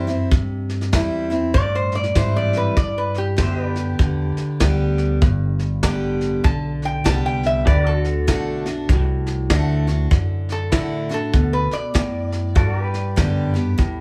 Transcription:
0.00 0.30 F#2 medium
0.00 0.27 G2 medium
0.00 2.73 G4 medium
0.00 0.28 C5 medium
0.00 2.74 C5 medium
0.00 2.74 E5 medium
0.07 0.31 C4 soft
0.07 0.30 E4 medium
0.07 snare soft
0.31 0.91 G2 medium
0.31 1.49 C3 medium
0.31 kick loud
0.31 snare soft
0.69 snare soft
0.81 snare soft
0.92 1.52 E2 medium
0.92 1.29 E3 medium
0.92 1.29 G3 medium
0.92 1.30 C4 medium
0.92 1.29 E4 medium
0.92 kick medium
0.92 snare loud
0.92 hi-hat pedal medium
1.30 1.54 C4 medium
1.30 1.53 E4 medium
1.30 snare soft
1.54 2.72 G2 medium
1.54 2.14 A2 medium
1.54 1.74 D5 loud
1.54 kick medium
1.54 snare soft
1.75 1.95 C5 medium
1.92 2.15 D5 medium
1.92 snare soft
2.03 snare soft
2.15 2.75 G#2 medium
2.15 2.75 E3 medium
2.15 2.75 G3 medium
2.15 2.75 C4 medium
2.15 2.76 E4 medium
2.15 2.36 C5 medium
2.15 kick medium
2.15 snare loud
2.15 hi-hat pedal medium
2.36 2.56 D5 medium
2.53 snare soft
2.57 2.77 B4 medium
2.77 3.95 G2 medium
2.77 3.36 G2 medium
2.77 2.97 D5 loud
2.77 kick loud
2.77 snare soft
2.98 3.17 B4 medium
3.14 4.98 G4 medium
3.14 snare soft
3.37 3.98 F#2 medium
3.37 3.96 D3 medium
3.37 3.97 B3 medium
3.37 7.63 G4 medium
3.37 3.97 G4 medium
3.37 3.59 C5 medium
3.37 3.65 E5 medium
3.37 kick medium
3.37 snare loud
3.37 hi-hat pedal medium
3.59 7.63 B4 medium
3.65 7.64 D5 medium
3.75 snare soft
3.99 4.34 E2 medium
3.99 4.59 D3 medium
3.99 kick loud
3.99 snare soft
4.37 muted upright bass stroke soft
4.37 snare soft
4.60 5.20 D2 medium
4.60 5.19 D3 medium
4.60 5.20 G3 medium
4.60 5.20 B3 medium
4.60 5.20 G4 medium
4.60 kick medium
4.60 snare loud
4.60 hi-hat pedal medium
4.98 snare soft
5.22 5.81 G1 medium
5.22 6.39 G2 medium
5.22 kick loud
5.22 snare soft
5.59 snare soft
5.83 6.43 A1 medium
5.83 6.42 D3 medium
5.83 6.42 G3 medium
5.83 6.43 B3 medium
5.83 6.43 G4 medium
5.83 kick medium
5.83 snare loud
5.83 hi-hat pedal medium
6.21 snare soft
6.44 7.04 B1 medium
6.44 7.03 D3 medium
6.44 6.84 A5 medium
6.44 kick loud
6.44 snare soft
6.82 7.05 G5 medium
6.82 snare soft
7.04 7.65 C2 medium
7.04 7.64 D3 medium
7.04 7.64 G3 medium
7.04 7.65 B3 medium
7.04 7.65 G4 medium
7.04 7.25 A5 medium
7.04 kick medium
7.04 snare loud
7.04 hi-hat pedal medium
7.26 7.46 G5 medium
7.43 7.66 E5 medium
7.43 snare soft
7.66 8.26 D2 medium
7.66 8.26 D3 medium
7.66 7.86 G4 medium
7.66 7.92 B4 medium
7.66 7.86 D5 medium
7.66 12.53 D5 medium
7.66 kick loud
7.66 snare soft
7.86 12.51 F#4 medium
7.86 9.06 A4 medium
7.92 12.52 A4 medium
8.04 snare soft
8.27 8.87 B1 medium
8.27 8.64 D3 medium
8.27 8.64 A3 medium
8.27 8.64 D4 medium
8.27 8.65 F#4 loud
8.27 kick medium
8.27 snare loud
8.27 hi-hat pedal medium
8.66 8.89 D4 soft
8.66 8.88 F#4 medium
8.66 snare soft
8.89 9.48 C2 medium
8.89 10.07 A2 medium
8.89 kick loud
8.89 snare soft
9.27 snare soft
9.50 10.09 D2 medium
9.50 9.86 D3 medium
9.50 9.86 A3 medium
9.50 9.87 D4 medium
9.50 9.86 F#4 medium
9.50 kick medium
9.50 snare loud
9.50 hi-hat pedal medium
9.87 10.11 D4 medium
9.87 10.10 F#4 medium
9.87 snare soft
10.11 10.71 F#2 medium
10.11 10.70 D3 medium
10.11 kick loud
10.11 snare soft
10.49 10.72 A4 medium
10.49 snare soft
10.72 11.32 A2 medium
10.72 11.08 D3 medium
10.72 11.08 A3 medium
10.72 11.09 D4 medium
10.72 11.12 E4 medium
10.72 11.08 F#4 loud
10.72 kick medium
10.72 snare loud
10.72 hi-hat pedal medium
11.09 11.33 D4 soft
11.09 11.32 F#4 medium
11.09 snare soft
11.14 11.53 A4 loud
11.33 11.69 D2 medium
11.33 11.92 B2 medium
11.33 kick loud
11.33 snare soft
11.53 11.73 B4 medium
11.71 13.53 D5 loud
11.71 snare soft
11.94 12.54 F#2 medium
11.94 12.53 A2 medium
11.94 kick medium
11.94 snare loud
11.94 hi-hat pedal medium
12.32 snare soft
12.55 13.73 G2 medium
12.55 13.15 G2 medium
12.55 12.76 F#4 medium
12.55 12.82 A4 medium
12.55 14.01 D5 medium
12.55 kick loud
12.55 snare soft
12.76 14.01 G4 medium
12.82 14.01 B4 medium
12.94 snare soft
13.16 13.76 F#2 medium
13.16 13.53 D3 medium
13.16 13.53 G3 medium
13.16 13.54 B3 medium
13.16 13.52 G4 medium
13.16 kick medium
13.16 snare medium
13.16 hi-hat pedal medium
13.54 13.78 B3 soft
13.54 13.77 G4 medium
13.54 snare soft
13.78 14.01 E2 medium
13.78 14.01 A2 medium
13.78 kick loud
13.78 snare soft

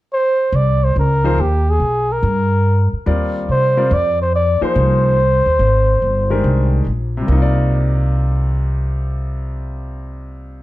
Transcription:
0.13 0.57 C5 medium
0.52 0.92 C2 medium
0.52 0.86 D5 medium
0.84 0.97 C5 medium
0.96 1.35 C#2 medium
0.96 1.42 A#4 medium
1.24 1.36 F3 medium
1.24 1.36 A#3 medium
1.24 1.37 D#4 medium
1.24 1.37 G#4 medium
1.24 1.37 C5 medium
1.38 1.77 D#2 medium
1.38 1.72 G4 medium
1.70 2.14 G#4 medium
1.80 2.19 B1 medium
2.12 2.95 A#4 medium
2.23 2.89 G2 medium
2.93 muted upright bass stroke soft
3.06 3.46 D#2 medium
3.06 3.72 G3 medium
3.06 3.72 C4 soft
3.06 3.72 F4 soft
3.06 3.72 A#4 soft
3.06 3.72 D5 medium
3.49 3.88 C3 medium
3.49 3.95 C5 medium
3.77 3.90 G3 medium
3.77 3.90 C4 medium
3.77 3.90 F4 medium
3.77 3.90 A#4 medium
3.77 3.90 D5 medium
3.91 4.58 F2 medium
3.91 4.21 D5 medium
4.22 4.33 C5 medium
4.35 4.61 D5 medium
4.61 5.15 F3 medium
4.61 5.15 A#3 medium
4.61 5.15 D#4 medium
4.61 5.15 G#4 medium
4.61 5.15 C5 medium
4.61 6.84 C5 medium
4.61 muted upright bass stroke soft
4.76 5.42 C2 medium
5.46 5.59 D#2 medium
5.59 5.99 G#1 medium
6.02 6.41 G1 medium
6.30 6.84 D#3 medium
6.30 6.84 G#3 medium
6.30 6.84 D4 medium
6.30 6.84 G4 medium
6.30 6.84 A#4 medium
6.44 6.83 C2 medium
6.87 7.26 A#1 medium
7.17 10.63 C3 medium
7.22 10.63 G3 medium
7.27 10.63 C2 medium
7.27 10.63 A#3 medium
7.32 10.63 D#4 medium
7.37 10.63 F4 medium
7.42 10.63 D5 medium

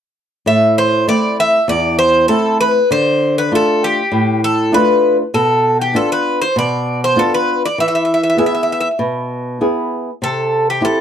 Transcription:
0.46 1.05 A2 medium
0.46 0.75 E5 medium
0.78 1.06 C5 medium
1.07 1.56 A3 soft
1.07 1.56 C4 soft
1.07 1.57 E4 soft
1.07 1.36 D5 medium
1.40 1.69 E5 medium
1.68 2.27 E2 medium
1.68 1.97 D5 medium
1.99 2.28 C5 medium
2.28 2.78 A3 soft
2.28 2.78 C4 soft
2.28 2.78 E4 soft
2.28 2.57 A4 medium
2.61 2.91 B4 medium
2.91 3.49 D3 medium
2.91 3.38 C5 medium
3.38 3.51 B4 medium
3.51 4.00 A3 soft
3.51 4.00 D4 soft
3.51 4.00 F4 soft
3.51 3.84 A4 medium
3.84 4.40 G4 medium
4.12 4.71 A2 medium
4.44 4.74 A4 medium
4.72 5.21 A3 soft
4.72 5.21 D4 soft
4.72 5.22 F4 soft
4.72 5.16 B4 medium
5.34 5.93 B2 medium
5.34 5.77 A4 medium
5.81 5.96 G4 medium
5.94 6.43 B3 soft
5.94 6.43 D4 soft
5.94 6.44 F4 soft
5.94 6.11 A4 medium
6.12 6.41 B4 medium
6.42 6.55 C5 medium
6.56 7.15 B2 medium
6.56 7.00 D5 medium
7.04 7.19 C5 medium
7.16 7.65 B3 soft
7.16 7.65 D4 soft
7.16 7.66 F4 medium
7.16 7.32 A4 medium
7.34 7.62 B4 medium
7.66 7.80 D5 medium
7.78 8.37 E3 medium
7.78 7.87 E5 medium
7.88 7.94 E5 medium
7.95 8.03 E5 medium
8.05 8.12 E5 soft
8.14 8.21 E5 medium
8.23 8.28 E5 soft
8.30 8.37 E5 soft
8.37 8.86 B3 soft
8.37 8.87 E4 soft
8.37 8.87 G#4 soft
8.37 8.45 E5 soft
8.46 8.53 E5 medium
8.55 8.62 E5 soft
8.63 8.70 E5 soft
8.72 8.79 E5 soft
8.81 8.87 E5 medium
8.99 9.58 B2 medium
9.61 10.09 B3 soft
9.61 10.09 E4 soft
9.61 10.10 G#4 soft
10.22 10.80 C3 medium
10.22 10.69 A4 medium
10.70 10.84 G4 medium
10.81 11.01 C4 soft
10.81 11.01 E4 soft
10.81 11.01 G4 soft
10.81 10.99 A4 medium

